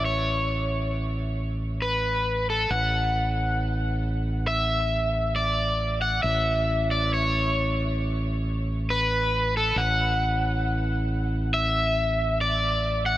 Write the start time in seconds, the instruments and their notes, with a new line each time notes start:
Already playing: fingered electric bass A1
0.05 overdriven electric guitar C#5
1.82 overdriven electric guitar B4
2.50 overdriven electric guitar A4
2.70 fingered electric bass A1, overdriven electric guitar F#5
4.48 overdriven electric guitar E5
5.36 overdriven electric guitar D5
6.02 overdriven electric guitar F#5
6.23 fingered electric bass A1, overdriven electric guitar E5
6.91 overdriven electric guitar D5
7.14 overdriven electric guitar C#5
8.90 overdriven electric guitar B4
9.57 overdriven electric guitar A4
9.76 fingered electric bass A1, overdriven electric guitar F#5
11.54 overdriven electric guitar E5
12.41 overdriven electric guitar D5
13.06 overdriven electric guitar F#5